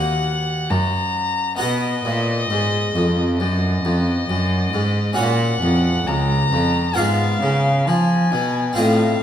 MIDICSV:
0, 0, Header, 1, 4, 480
1, 0, Start_track
1, 0, Tempo, 898204
1, 855, Time_signature, 4, 2, 24, 8
1, 4932, End_track
2, 0, Start_track
2, 0, Title_t, "Violin"
2, 0, Program_c, 0, 40
2, 0, Note_on_c, 0, 78, 56
2, 376, Note_on_c, 0, 82, 58
2, 385, Note_off_c, 0, 78, 0
2, 851, Note_off_c, 0, 82, 0
2, 854, Note_on_c, 0, 75, 64
2, 1793, Note_off_c, 0, 75, 0
2, 1818, Note_on_c, 0, 75, 57
2, 2750, Note_off_c, 0, 75, 0
2, 2766, Note_on_c, 0, 78, 56
2, 3245, Note_on_c, 0, 82, 63
2, 3253, Note_off_c, 0, 78, 0
2, 3724, Note_on_c, 0, 77, 57
2, 3732, Note_off_c, 0, 82, 0
2, 4211, Note_on_c, 0, 80, 57
2, 4219, Note_off_c, 0, 77, 0
2, 4692, Note_off_c, 0, 80, 0
2, 4695, Note_on_c, 0, 77, 62
2, 4932, Note_off_c, 0, 77, 0
2, 4932, End_track
3, 0, Start_track
3, 0, Title_t, "Harpsichord"
3, 0, Program_c, 1, 6
3, 0, Note_on_c, 1, 39, 50
3, 0, Note_on_c, 1, 58, 41
3, 0, Note_on_c, 1, 66, 45
3, 0, Note_on_c, 1, 75, 41
3, 353, Note_off_c, 1, 39, 0
3, 378, Note_on_c, 1, 42, 52
3, 824, Note_off_c, 1, 58, 0
3, 827, Note_off_c, 1, 66, 0
3, 831, Note_off_c, 1, 75, 0
3, 836, Note_off_c, 1, 42, 0
3, 837, Note_on_c, 1, 59, 42
3, 845, Note_on_c, 1, 66, 42
3, 853, Note_on_c, 1, 75, 43
3, 861, Note_on_c, 1, 47, 49
3, 1078, Note_off_c, 1, 47, 0
3, 1097, Note_on_c, 1, 46, 46
3, 1315, Note_off_c, 1, 46, 0
3, 1339, Note_on_c, 1, 44, 50
3, 1555, Note_off_c, 1, 44, 0
3, 1579, Note_on_c, 1, 41, 47
3, 1795, Note_off_c, 1, 41, 0
3, 1818, Note_on_c, 1, 42, 46
3, 2035, Note_off_c, 1, 42, 0
3, 2058, Note_on_c, 1, 41, 57
3, 2273, Note_off_c, 1, 41, 0
3, 2295, Note_on_c, 1, 42, 55
3, 2510, Note_off_c, 1, 42, 0
3, 2531, Note_on_c, 1, 44, 54
3, 2737, Note_off_c, 1, 59, 0
3, 2741, Note_off_c, 1, 66, 0
3, 2742, Note_on_c, 1, 61, 43
3, 2745, Note_off_c, 1, 75, 0
3, 2746, Note_off_c, 1, 44, 0
3, 2749, Note_on_c, 1, 66, 45
3, 2759, Note_on_c, 1, 73, 46
3, 2766, Note_on_c, 1, 46, 45
3, 2984, Note_off_c, 1, 46, 0
3, 3006, Note_on_c, 1, 41, 52
3, 3225, Note_off_c, 1, 41, 0
3, 3248, Note_on_c, 1, 37, 50
3, 3466, Note_off_c, 1, 37, 0
3, 3488, Note_on_c, 1, 41, 49
3, 3693, Note_off_c, 1, 61, 0
3, 3696, Note_off_c, 1, 66, 0
3, 3701, Note_off_c, 1, 73, 0
3, 3706, Note_off_c, 1, 41, 0
3, 3707, Note_on_c, 1, 59, 40
3, 3712, Note_on_c, 1, 65, 43
3, 3722, Note_on_c, 1, 77, 41
3, 3730, Note_on_c, 1, 44, 46
3, 3948, Note_off_c, 1, 44, 0
3, 3968, Note_on_c, 1, 49, 51
3, 4188, Note_off_c, 1, 49, 0
3, 4209, Note_on_c, 1, 53, 47
3, 4430, Note_off_c, 1, 53, 0
3, 4447, Note_on_c, 1, 47, 46
3, 4661, Note_off_c, 1, 59, 0
3, 4664, Note_off_c, 1, 65, 0
3, 4666, Note_on_c, 1, 60, 42
3, 4669, Note_off_c, 1, 47, 0
3, 4669, Note_off_c, 1, 77, 0
3, 4676, Note_on_c, 1, 65, 41
3, 4684, Note_on_c, 1, 75, 42
3, 4691, Note_on_c, 1, 45, 43
3, 4910, Note_off_c, 1, 45, 0
3, 4932, Note_off_c, 1, 60, 0
3, 4932, Note_off_c, 1, 65, 0
3, 4932, Note_off_c, 1, 75, 0
3, 4932, End_track
4, 0, Start_track
4, 0, Title_t, "Cello"
4, 0, Program_c, 2, 42
4, 0, Note_on_c, 2, 39, 73
4, 353, Note_off_c, 2, 39, 0
4, 378, Note_on_c, 2, 42, 68
4, 836, Note_off_c, 2, 42, 0
4, 858, Note_on_c, 2, 47, 63
4, 1081, Note_off_c, 2, 47, 0
4, 1099, Note_on_c, 2, 46, 57
4, 1332, Note_off_c, 2, 46, 0
4, 1336, Note_on_c, 2, 44, 54
4, 1570, Note_off_c, 2, 44, 0
4, 1576, Note_on_c, 2, 41, 56
4, 1815, Note_on_c, 2, 42, 66
4, 1823, Note_off_c, 2, 41, 0
4, 2053, Note_off_c, 2, 42, 0
4, 2056, Note_on_c, 2, 41, 57
4, 2289, Note_off_c, 2, 41, 0
4, 2295, Note_on_c, 2, 42, 58
4, 2526, Note_off_c, 2, 42, 0
4, 2529, Note_on_c, 2, 44, 61
4, 2762, Note_off_c, 2, 44, 0
4, 2767, Note_on_c, 2, 46, 65
4, 3001, Note_off_c, 2, 46, 0
4, 3006, Note_on_c, 2, 41, 58
4, 3241, Note_off_c, 2, 41, 0
4, 3244, Note_on_c, 2, 37, 57
4, 3480, Note_off_c, 2, 37, 0
4, 3486, Note_on_c, 2, 41, 50
4, 3722, Note_off_c, 2, 41, 0
4, 3725, Note_on_c, 2, 44, 64
4, 3963, Note_off_c, 2, 44, 0
4, 3967, Note_on_c, 2, 49, 54
4, 4210, Note_on_c, 2, 53, 59
4, 4218, Note_off_c, 2, 49, 0
4, 4452, Note_on_c, 2, 47, 58
4, 4460, Note_off_c, 2, 53, 0
4, 4688, Note_off_c, 2, 47, 0
4, 4691, Note_on_c, 2, 45, 60
4, 4927, Note_off_c, 2, 45, 0
4, 4932, End_track
0, 0, End_of_file